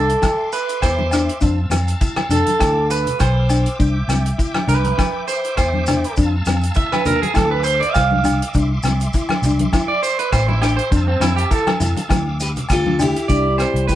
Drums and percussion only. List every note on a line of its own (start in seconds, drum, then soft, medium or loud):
0.09 closed hi-hat medium
0.22 kick medium
0.22 cross-stick medium
0.22 closed hi-hat soft
0.22 high conga medium
0.22 low agogo medium
0.22 maracas medium
0.52 closed hi-hat soft
0.52 maracas medium
0.69 closed hi-hat soft
0.69 maracas soft
0.82 kick medium
0.82 cross-stick medium
0.82 closed hi-hat soft
0.82 low agogo medium
0.82 maracas medium
0.99 high conga medium
1.11 cross-stick medium
1.11 closed hi-hat soft
1.11 low agogo medium
1.11 maracas medium
1.29 closed hi-hat soft
1.41 kick loud
1.41 closed hi-hat medium
1.41 maracas medium
1.71 cross-stick medium
1.71 closed hi-hat soft
1.71 high conga medium
1.71 low agogo medium
1.71 maracas loud
1.88 closed hi-hat medium
1.88 maracas soft
2.01 kick medium
2.01 closed hi-hat medium
2.01 maracas medium
2.16 cross-stick medium
2.16 high conga medium
2.16 low agogo medium
2.31 closed hi-hat medium
2.31 low conga medium
2.31 maracas medium
2.46 closed hi-hat medium
2.46 high conga medium
2.46 maracas soft
2.60 kick medium
2.60 cross-stick medium
2.60 closed hi-hat medium
2.60 low agogo medium
2.60 maracas medium
2.90 closed hi-hat medium
2.90 maracas medium
3.06 closed hi-hat soft
3.06 low conga soft
3.20 kick medium
3.20 cross-stick medium
3.20 closed hi-hat medium
3.20 low agogo medium
3.20 maracas medium
3.50 closed hi-hat soft
3.50 low agogo medium
3.50 maracas medium
3.66 closed hi-hat soft
3.66 maracas soft
3.80 kick loud
3.80 closed hi-hat soft
3.80 maracas medium
4.09 cross-stick medium
4.09 closed hi-hat soft
4.09 high conga medium
4.09 low agogo medium
4.09 maracas medium
4.26 closed hi-hat soft
4.26 maracas soft
4.39 kick medium
4.39 closed hi-hat soft
4.39 maracas medium
4.54 cross-stick medium
4.54 high conga medium
4.54 low agogo medium
4.69 closed hi-hat soft
4.69 low conga medium
4.69 maracas medium
4.84 closed hi-hat soft
4.84 high conga medium
4.99 kick medium
4.99 cross-stick medium
4.99 closed hi-hat soft
4.99 high conga medium
4.99 low agogo medium
4.99 maracas medium
5.28 closed hi-hat medium
5.28 maracas medium
5.44 closed hi-hat soft
5.44 maracas soft
5.57 kick medium
5.57 cross-stick medium
5.57 closed hi-hat soft
5.57 low agogo medium
5.57 maracas medium
5.73 high conga medium
5.86 cross-stick medium
5.86 closed hi-hat soft
5.86 low conga medium
5.86 low agogo medium
5.86 maracas medium
6.04 closed hi-hat soft
6.16 kick loud
6.16 closed hi-hat medium
6.16 maracas medium
6.45 cross-stick medium
6.45 closed hi-hat soft
6.45 high conga medium
6.45 low agogo medium
6.45 maracas medium
6.61 closed hi-hat medium
6.61 maracas soft
6.75 kick medium
6.75 closed hi-hat soft
6.75 maracas medium
6.92 cross-stick medium
6.92 high conga medium
6.92 low agogo medium
7.05 closed hi-hat medium
7.05 low conga medium
7.05 maracas medium
7.23 closed hi-hat medium
7.23 high conga medium
7.35 kick loud
7.35 cross-stick medium
7.35 closed hi-hat medium
7.35 high conga medium
7.35 low agogo medium
7.35 maracas medium
7.64 closed hi-hat medium
7.64 maracas medium
7.80 closed hi-hat soft
7.80 maracas soft
7.94 kick medium
7.94 cross-stick medium
7.94 closed hi-hat medium
7.94 low agogo medium
7.94 maracas medium
8.11 high conga medium
8.24 closed hi-hat medium
8.24 low conga medium
8.24 low agogo medium
8.24 maracas medium
8.42 closed hi-hat medium
8.54 kick medium
8.54 closed hi-hat medium
8.54 maracas medium
8.83 cross-stick medium
8.83 closed hi-hat soft
8.83 high conga medium
8.83 low agogo medium
8.83 maracas medium
9.00 closed hi-hat medium
9.00 maracas soft
9.13 kick medium
9.13 closed hi-hat medium
9.13 maracas medium
9.29 cross-stick medium
9.29 high conga medium
9.29 low agogo medium
9.43 closed hi-hat medium
9.43 low conga medium
9.43 maracas medium
9.59 closed hi-hat medium
9.59 high conga medium
9.72 kick medium
9.72 cross-stick medium
9.72 closed hi-hat soft
9.72 high conga medium
9.72 low agogo medium
9.72 maracas medium
10.03 closed hi-hat medium
10.03 maracas medium
10.19 closed hi-hat soft
10.33 kick medium
10.33 cross-stick medium
10.33 closed hi-hat soft
10.33 low agogo medium
10.33 maracas medium
10.49 high conga medium
10.62 cross-stick medium
10.62 closed hi-hat soft
10.62 low agogo medium
10.62 maracas medium
10.79 closed hi-hat soft
10.92 kick medium
10.92 closed hi-hat medium
10.92 maracas medium
11.21 cross-stick medium
11.21 closed hi-hat soft
11.21 high conga medium
11.21 low agogo medium
11.21 maracas medium
11.37 closed hi-hat soft
11.37 maracas soft
11.51 kick medium
11.51 closed hi-hat soft
11.51 maracas medium
11.67 cross-stick medium
11.67 high conga medium
11.67 low agogo medium
11.80 closed hi-hat medium
11.80 low conga medium
11.80 maracas medium
11.97 closed hi-hat medium
11.97 high conga medium
11.97 maracas soft
12.10 kick loud
12.10 cross-stick medium
12.10 closed hi-hat medium
12.10 high conga medium
12.10 low agogo medium
12.10 maracas medium
12.40 closed hi-hat soft
12.40 maracas medium
12.56 closed hi-hat soft
12.56 low conga medium
12.56 maracas soft
12.69 kick loud
12.69 cross-stick medium
12.69 closed hi-hat soft
12.69 low agogo medium
12.69 maracas medium
12.86 high conga medium
12.99 closed hi-hat soft
12.99 low conga medium
12.99 low agogo medium
12.99 maracas medium
13.16 closed hi-hat medium
13.16 maracas soft
13.29 kick medium
13.29 closed hi-hat soft
13.29 maracas medium
13.58 cross-stick medium
13.58 closed hi-hat soft
13.58 low agogo soft
13.58 maracas medium
13.76 closed hi-hat soft
13.89 kick medium
13.89 closed hi-hat soft
13.89 maracas medium